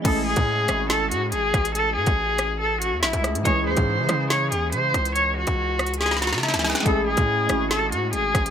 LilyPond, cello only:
\new Staff \with { instrumentName = "Cello" } { \time 4/4 \key a \lydian \tempo 4 = 141 a'8 gis'4. a'8 fis'8 gis'4 | a'8 gis'4. a'8 fis'8 e'8 r8 | cis''8 bis'4. cis''8 gis'8 bis'4 | cis''8 fis'4. gis'8 fis'8 e'8 r8 |
a'8 gis'4. a'8 fis'8 gis'4 | }